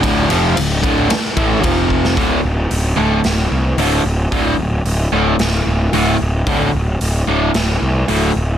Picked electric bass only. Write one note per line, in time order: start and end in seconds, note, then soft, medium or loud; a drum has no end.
0.03 0.28 D1 medium
0.29 0.55 F1 medium
0.57 0.82 D1 medium
0.84 1.09 D1 medium
1.11 muted picked electric bass stroke soft
1.37 1.62 A1 medium
1.64 2.17 F1 medium
2.17 2.39 D1 medium
2.45 2.66 D1 medium
2.71 2.92 D1 medium
2.98 3.20 D1 medium
3.25 3.46 D1 medium
3.51 3.73 C2 medium
3.77 3.99 D1 medium
4.04 4.26 D1 medium
4.32 4.54 D1 medium
4.58 4.80 D1 medium
4.84 5.06 D1 medium
5.12 5.34 D1 medium
5.39 5.61 D1 medium
5.66 5.88 D1 medium
5.93 6.15 D1 medium
6.21 6.42 D1 medium
6.47 6.68 D1 medium
6.74 6.96 D1 medium
7.01 7.22 D1 medium
7.28 7.49 D1 medium
7.55 7.76 D1 medium
7.82 8.03 C2 medium
8.09 8.30 D1 medium
8.36 8.57 D1 medium